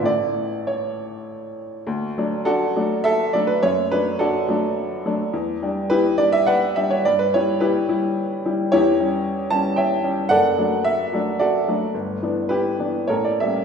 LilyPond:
<<
  \new Staff \with { instrumentName = "Upright piano" } { \time 3/4 \key d \major \tempo 4 = 105 d''4 cis''4. r8 | r4 <d' fis' a'>4 <a' e''>8 d''16 b'16 | cis''8 b'8 <d' fis' a'>4. r8 | r4 <e' g' b'>8 d''16 e''16 <b' d'' fis''>8 e''16 cis''16 |
d''16 b'16 cis''8 <e' g' b'>4. r8 | <e' g' cis''>4. a''8 <cis'' e'' g''>4 | <a' d'' fis''>4 e''4 <fis' a' d''>4 | r4 <e' g' b'>4 <a' bes' cis''>16 d''16 e''8 | }
  \new Staff \with { instrumentName = "Upright piano" } { \time 3/4 \key d \major <a,, e a e'>2. | d,8 <fis a d'>4 <fis a d'>4 <fis a d'>8 | fis,8 <fis a d'>4 <fis a d'>4 <fis a d'>8 | e,8 <g d'>4 <g d'>4 <g d'>8 |
g,8 <g e'>4 <g e'>4 <g e'>8 | e,8 <g cis'>4 <g cis'>4 <g cis'>8 | fis,,8 <fis a d'>4 <fis a d'>4 <fis a d'>8 | g,,8 <e b d'>4 <e b d'>8 a,,8 <g bes cis'>8 | }
>>